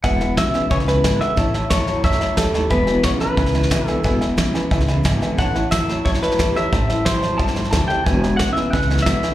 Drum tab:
HH |----p-------p---|----p-------p---|----p-------p---|----p-------p---|
SD |o-o-o-o-ooo-o-o-|o-o-o-o-ooo-o-o-|o-o-o-o-ooooo-o-|o-o-o-o-ooo-o-o-|
BD |o---o---o---o---|o---o---o---o---|o---o---o---o---|o---o---o---o---|

HH |----p-------p---|----p-------p---|----p-------p---|
SD |o-o-o-o-ooooo-o-|o-o-o-o-ooooo-o-|o-o-o-o-ooooo-o-|
BD |o---o---o---o---|o---o---o---o---|o---o---o---o---|